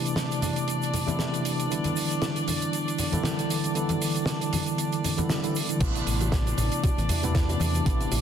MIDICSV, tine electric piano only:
0, 0, Header, 1, 2, 480
1, 0, Start_track
1, 0, Key_signature, 0, "minor"
1, 0, Tempo, 512821
1, 1598, Time_signature, 4, 2, 24, 8
1, 7685, End_track
2, 0, Start_track
2, 0, Title_t, "Tine electric piano"
2, 0, Program_c, 0, 4
2, 0, Note_on_c, 0, 48, 80
2, 0, Note_on_c, 0, 52, 71
2, 0, Note_on_c, 0, 57, 73
2, 0, Note_on_c, 0, 59, 71
2, 0, Note_on_c, 0, 64, 88
2, 970, Note_off_c, 0, 48, 0
2, 972, Note_off_c, 0, 52, 0
2, 975, Note_off_c, 0, 57, 0
2, 977, Note_off_c, 0, 59, 0
2, 979, Note_off_c, 0, 64, 0
2, 995, Note_on_c, 0, 48, 91
2, 999, Note_on_c, 0, 52, 89
2, 1004, Note_on_c, 0, 57, 87
2, 1009, Note_on_c, 0, 59, 85
2, 1013, Note_on_c, 0, 64, 101
2, 1564, Note_off_c, 0, 48, 0
2, 1566, Note_off_c, 0, 52, 0
2, 1569, Note_off_c, 0, 57, 0
2, 1571, Note_off_c, 0, 59, 0
2, 1573, Note_off_c, 0, 64, 0
2, 1584, Note_on_c, 0, 50, 80
2, 1589, Note_on_c, 0, 52, 78
2, 1594, Note_on_c, 0, 55, 75
2, 1597, Note_on_c, 0, 59, 77
2, 1603, Note_on_c, 0, 64, 90
2, 2890, Note_off_c, 0, 50, 0
2, 2893, Note_off_c, 0, 52, 0
2, 2896, Note_off_c, 0, 55, 0
2, 2897, Note_off_c, 0, 59, 0
2, 2900, Note_off_c, 0, 64, 0
2, 2917, Note_on_c, 0, 50, 98
2, 2920, Note_on_c, 0, 52, 92
2, 2924, Note_on_c, 0, 55, 86
2, 2931, Note_on_c, 0, 59, 91
2, 2935, Note_on_c, 0, 64, 107
2, 3485, Note_off_c, 0, 50, 0
2, 3487, Note_off_c, 0, 52, 0
2, 3489, Note_off_c, 0, 55, 0
2, 3492, Note_off_c, 0, 59, 0
2, 3494, Note_off_c, 0, 64, 0
2, 3504, Note_on_c, 0, 50, 85
2, 3509, Note_on_c, 0, 52, 76
2, 3514, Note_on_c, 0, 55, 75
2, 3519, Note_on_c, 0, 59, 76
2, 3525, Note_on_c, 0, 64, 93
2, 4811, Note_off_c, 0, 50, 0
2, 4813, Note_off_c, 0, 52, 0
2, 4816, Note_off_c, 0, 55, 0
2, 4818, Note_off_c, 0, 59, 0
2, 4821, Note_off_c, 0, 64, 0
2, 4842, Note_on_c, 0, 50, 90
2, 4842, Note_on_c, 0, 52, 83
2, 4845, Note_on_c, 0, 55, 80
2, 4846, Note_on_c, 0, 59, 83
2, 4850, Note_on_c, 0, 64, 101
2, 5046, Note_off_c, 0, 50, 0
2, 5046, Note_off_c, 0, 52, 0
2, 5048, Note_off_c, 0, 55, 0
2, 5048, Note_off_c, 0, 59, 0
2, 5050, Note_off_c, 0, 64, 0
2, 5082, Note_on_c, 0, 50, 86
2, 5085, Note_on_c, 0, 52, 83
2, 5087, Note_on_c, 0, 55, 81
2, 5088, Note_on_c, 0, 59, 83
2, 5091, Note_on_c, 0, 64, 99
2, 5207, Note_off_c, 0, 50, 0
2, 5209, Note_off_c, 0, 52, 0
2, 5210, Note_off_c, 0, 55, 0
2, 5211, Note_off_c, 0, 59, 0
2, 5212, Note_off_c, 0, 64, 0
2, 5323, Note_on_c, 0, 50, 76
2, 5325, Note_on_c, 0, 52, 67
2, 5329, Note_on_c, 0, 55, 67
2, 5330, Note_on_c, 0, 59, 69
2, 5333, Note_on_c, 0, 64, 81
2, 5408, Note_off_c, 0, 50, 0
2, 5409, Note_off_c, 0, 52, 0
2, 5411, Note_off_c, 0, 55, 0
2, 5412, Note_off_c, 0, 59, 0
2, 5413, Note_off_c, 0, 64, 0
2, 5428, Note_on_c, 0, 48, 84
2, 5432, Note_on_c, 0, 52, 76
2, 5435, Note_on_c, 0, 57, 75
2, 5441, Note_on_c, 0, 59, 78
2, 5445, Note_on_c, 0, 64, 91
2, 6733, Note_off_c, 0, 48, 0
2, 6735, Note_off_c, 0, 52, 0
2, 6736, Note_off_c, 0, 57, 0
2, 6739, Note_off_c, 0, 59, 0
2, 6741, Note_off_c, 0, 64, 0
2, 6763, Note_on_c, 0, 48, 98
2, 6767, Note_on_c, 0, 52, 92
2, 6770, Note_on_c, 0, 57, 89
2, 6776, Note_on_c, 0, 59, 90
2, 6781, Note_on_c, 0, 64, 105
2, 7328, Note_off_c, 0, 48, 0
2, 7330, Note_off_c, 0, 52, 0
2, 7332, Note_off_c, 0, 57, 0
2, 7335, Note_off_c, 0, 59, 0
2, 7337, Note_off_c, 0, 64, 0
2, 7350, Note_on_c, 0, 48, 83
2, 7353, Note_on_c, 0, 52, 76
2, 7358, Note_on_c, 0, 57, 76
2, 7364, Note_on_c, 0, 59, 74
2, 7367, Note_on_c, 0, 64, 93
2, 7685, Note_off_c, 0, 48, 0
2, 7685, Note_off_c, 0, 52, 0
2, 7685, Note_off_c, 0, 57, 0
2, 7685, Note_off_c, 0, 59, 0
2, 7685, Note_off_c, 0, 64, 0
2, 7685, End_track
0, 0, End_of_file